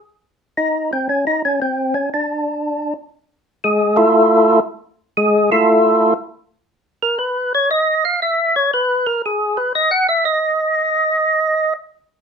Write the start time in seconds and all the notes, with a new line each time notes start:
0.57 D#4
0.93 C4
1.09 C#4
1.27 D#4
1.45 C#4
1.62 C4
1.94 C#4
2.14 D4
3.64 G#3 G#4
3.96 A3 E4 F4 A4
5.17 G#3 G#4
5.51 A3 E4 F4 A4
7.03 A#4
7.19 B4
7.55 C#5
7.71 D#5
8.05 F5
8.22 E5
8.56 C#5
8.74 B4
9.07 A#4
9.26 G#4
9.57 B4
9.75 D#5
9.91 F#5
10.09 E5
10.25 D#5